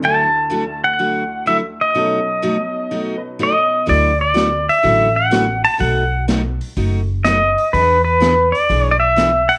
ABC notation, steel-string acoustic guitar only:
X:1
M:4/4
L:1/8
Q:"Swing" 1/4=125
K:D
V:1 name="Steel-string acoustic guitar"
[D,F,A,EF] z [D,F,A,EF] z [D,F,A,EF] z [D,F,A,EF] z | [B,,F,A,^DF] z [B,,F,A,DF] z [B,,F,A,DF] z [B,,F,A,DF] z | [D,F,A,EF] z [D,F,A,EF] z [D,F,A,EF] z [D,F,A,EF] z | [B,,F,A,^DF] z [B,,F,A,DF] z [B,,F,A,DF] z [B,,F,A,DF] z |
[E,B,D^G] z [E,B,DG] z [E,B,DG] z [E,B,DG] z |]